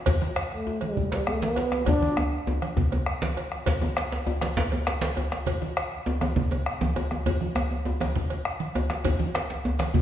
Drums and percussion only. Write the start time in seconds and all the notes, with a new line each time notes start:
0.06 bombo low, cowbell, djembe slap, high conga, low conga, djembe bass
0.21 bombo rim, djembe slap, djembe tone, high conga
0.36 bombo rim, cowbell
0.51 bombo rim
0.67 djembe tone
0.81 cowbell, djembe slap, high conga
0.97 bombo low, djembe slap, low conga, djembe bass
1.12 cowbell, djembe slap, djembe tone, high conga
1.27 bombo rim, djembe tone
1.42 djembe slap, high conga
1.56 cowbell, djembe slap, djembe tone
1.72 bombo rim, djembe slap, high conga
1.86 bombo rim, bombo low, cowbell, djembe tone, djembe bass, low conga
2.02 djembe slap, high conga, djembe tone
2.17 bombo rim, djembe slap, djembe tone
2.32 djembe slap, high conga
2.47 djembe tone, high conga
2.62 bombo rim, cowbell, high conga
2.77 bombo rim, bombo low, djembe tone, djembe bass, low conga
2.92 cowbell, djembe tone, high conga
3.06 bombo rim
3.22 djembe slap, high conga
3.36 bombo rim, cowbell, djembe slap, djembe tone
3.52 bombo rim, djembe slap
3.66 bombo low, cowbell, djembe slap, high conga, djembe bass, low conga
3.81 bombo rim, djembe slap, djembe tone, high conga
3.97 bombo rim, cowbell, djembe slap
4.12 bombo rim, djembe slap
4.27 djembe tone
4.41 bombo rim, cowbell, djembe slap, high conga
4.57 bombo low, djembe slap, djembe bass, low conga
4.72 cowbell, high conga, djembe tone
4.87 bombo rim, djembe slap
5.01 djembe slap, high conga
5.17 cowbell, djembe tone
5.32 bombo rim, djembe slap, high conga
5.47 bombo low, cowbell, high conga, low conga, djembe bass
5.61 bombo rim, djembe slap, djembe tone, high conga
5.77 bombo rim, cowbell
5.92 bombo rim
6.06 djembe tone
6.21 bombo rim, cowbell, djembe slap, high conga, djembe tone
6.36 bombo low, djembe slap, djembe tone, low conga, djembe bass
6.51 cowbell, djembe tone, high conga
6.66 bombo rim
6.81 djembe slap, djembe tone, high conga
6.96 cowbell, djembe tone
7.11 bombo rim, djembe slap, high conga, djembe tone
7.26 bombo low, cowbell, high conga, djembe tone, low conga, djembe bass
7.41 bombo rim, high conga, djembe tone
7.55 bombo rim, cowbell, djembe tone
7.71 bombo rim, djembe tone
7.85 djembe tone
8.00 bombo rim, cowbell, djembe slap, djembe tone, high conga
8.16 bombo low, djembe slap, low conga, djembe bass
8.30 cowbell, high conga, djembe tone
8.45 bombo rim
8.60 djembe slap, high conga
8.75 cowbell, djembe tone
8.90 bombo rim, djembe slap, high conga
9.05 bombo low, cowbell, djembe tone, low conga, djembe bass
9.20 djembe slap, djembe tone, high conga
9.35 bombo rim, cowbell, djembe slap, high conga
9.50 djembe slap
9.65 djembe tone
9.79 bombo rim, cowbell, djembe slap, high conga
9.94 bombo rim, bombo low, high conga, djembe tone, djembe bass, low conga